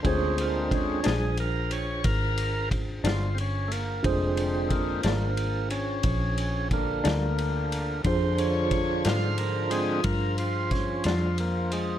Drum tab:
RD |xxxxxxxxxxxx|xxxxxxxxxxxx|xxxxxxxxxxxx|
SD |---o-----o--|---o-----o--|---o----oo--|
BD |o-o---o-o---|o-o---o-o---|o-o---o-o---|